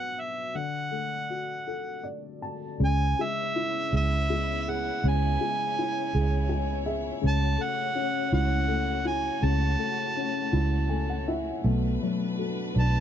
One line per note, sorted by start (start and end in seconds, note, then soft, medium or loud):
0.00 0.50 B2 medium
0.00 0.13 F#3 soft
0.00 0.51 D4 soft
0.00 0.52 F#4 soft
0.00 0.54 B4 soft
0.00 0.21 F#5 medium
0.20 0.58 E5 medium
0.55 2.77 D3 medium
0.55 2.07 F#5 medium
0.92 2.39 A3 soft
1.30 2.77 F#4 soft
1.68 2.77 A4 soft
2.04 2.78 D5 medium
2.42 2.78 A5 medium
2.80 3.13 C#2 medium
2.80 4.99 C#3 medium
2.80 7.20 B3 medium
2.80 7.20 E4 medium
2.80 11.61 C#5 medium
2.85 3.24 G#5 loud
3.19 4.28 G#3 medium
3.19 3.95 E5 loud
3.56 5.00 E4 medium
3.92 4.90 C#2 medium
3.92 4.66 G#4 medium
3.92 4.63 E5 medium
4.30 5.39 G#3 medium
4.63 4.71 E5 medium
4.68 6.11 G#4 medium
4.68 5.05 F#5 medium
5.04 5.36 C#2 medium
5.04 7.20 C#3 medium
5.08 6.86 G#5 medium
5.41 6.48 G#3 medium
5.79 7.21 E4 medium
6.14 7.10 C#2 medium
6.14 6.85 G#4 medium
6.49 7.21 G#3 soft
6.49 6.84 G#5 medium
6.86 7.22 G#4 medium
6.86 7.21 E5 medium
7.21 7.56 C#2 medium
7.21 9.37 C#3 medium
7.21 13.00 A3 medium
7.21 11.60 F#4 medium
7.27 7.64 A5 loud
7.58 8.66 A3 medium
7.63 8.33 F#5 loud
7.95 9.38 C#4 medium
8.33 9.28 C#2 medium
8.33 9.04 E4 medium
8.33 9.03 F#5 loud
8.68 9.77 A3 medium
9.05 10.48 E4 medium
9.05 9.47 G#5 loud
9.42 9.75 C#2 medium
9.42 11.60 C#3 medium
9.42 11.28 A5 medium
9.79 10.88 A3 medium
10.17 11.61 C#4 medium
10.53 11.50 C#2 medium
10.53 11.27 E4 medium
10.89 11.62 A3 soft
10.89 11.07 G#5 medium
11.10 11.26 F#5 medium
11.28 11.64 E4 medium
11.28 11.62 E5 medium
11.63 11.97 B1 medium
11.63 13.00 B2 medium
11.63 12.00 A3 medium
11.63 13.00 D4 medium
11.63 13.00 B4 medium
12.01 13.00 F#3 soft
12.01 13.00 A3 medium
12.37 13.00 A3 medium
12.37 13.00 F#4 medium
12.74 13.00 B1 medium
12.74 13.00 D4 medium
12.79 13.00 A5 medium